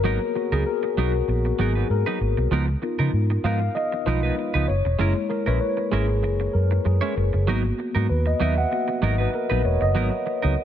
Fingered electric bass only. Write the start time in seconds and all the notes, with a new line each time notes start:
0.04 G#1
0.52 C#2
0.97 B1
1.28 A#1
1.59 G#1
1.90 G#2
2.21 G#1
2.37 B1
2.51 C#2
2.99 C#3
3.13 G#2
3.44 G#2
4.06 B1
4.54 C#2
4.69 F#1
4.85 E1
4.99 F#1
5.47 A#1
5.92 G#1
6.23 F#1
6.54 F#2
6.85 F#2
7.17 F#1
7.34 F#1
7.48 G#1
7.95 G#2
8.10 D#2
8.40 D#2
9.02 G#1
9.51 A#1
9.65 E1
9.81 F#1
9.96 G#1
10.44 C#2